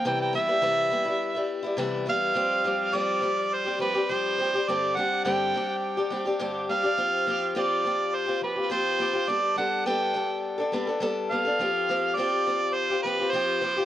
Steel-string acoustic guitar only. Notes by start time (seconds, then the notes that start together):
0.05 C3 E3 G3 B3 E4
0.33 E3 G3 B3 E4
0.47 G3 B3 E4
0.61 C3 E3 G3 B3 E4
0.90 E3 G3 B3 E4
1.05 G3 B3 E4
1.35 G3 B3 E4
1.63 G3 B3 E4
1.77 C3 E3 G3 B3 E4
2.06 E3 G3 B3 E4
2.34 F3 G3 C4 G4
2.64 F3 G3 C4 G4
2.93 F3 G3 C4 G4
3.21 F3 G3 C4 G4
3.65 G3 C4 G4
3.79 F3 G3 C4 G4
3.94 G3 C4 G4
4.09 F3 G3 C4 G4
4.38 F3 G3 C4 G4
4.54 G3 C4 G4
4.68 G2 D3 G3 C4 D4 G4
4.97 G3 C4 D4 G4
5.25 G2 D3 G3 C4 D4 G4
5.54 G3 C4 D4 G4
5.97 G3 C4 D4 G4
6.11 G3 C4 D4 G4
6.26 G3 C4 D4 G4
6.40 G2 D3 G3 C4 D4 G4
6.70 G3 C4 D4 G4
6.83 G3 C4 D4 G4
6.98 F3 C4 F4 G4
7.27 F3 C4 F4 G4
7.55 F3 C4 F4 G4
7.84 F3 C4 F4 G4
8.26 C4 F4 G4
8.41 F3 C4 F4 G4
8.56 C4 F4 G4
8.70 F3 C4 F4 G4
8.99 F3 C4 F4 G4
9.13 C4 F4 G4
9.28 G3 B3 D4 A4
9.56 G3 B3 D4 A4
9.86 G3 B3 D4 A4
10.14 G3 B3 D4 A4
10.58 B3 D4 A4
10.72 G3 B3 D4 A4
10.87 B3 D4 A4
11.00 G3 B3 D4 A4
11.31 G3 B3 D4 A4
11.45 B3 D4 A4
11.59 F3 C4 F4 G4
11.89 F3 C4 F4 G4
12.17 F3 C4 F4 G4
12.47 F3 C4 F4 G4
12.90 C4 F4 G4
13.04 F3 C4 F4 G4
13.19 C4 F4 G4
13.33 F3 C4 F4 G4
13.61 F3 C4 F4 G4
13.77 C4 F4 G4